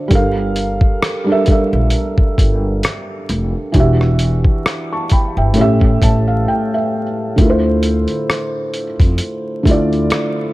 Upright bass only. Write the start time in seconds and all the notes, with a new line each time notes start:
0.11 G1
1.73 A#1
2.38 G1
3.29 F1
3.75 E1
5.37 G1
5.57 A1
6.02 A1
7.38 D2
9.00 F2
9.66 D2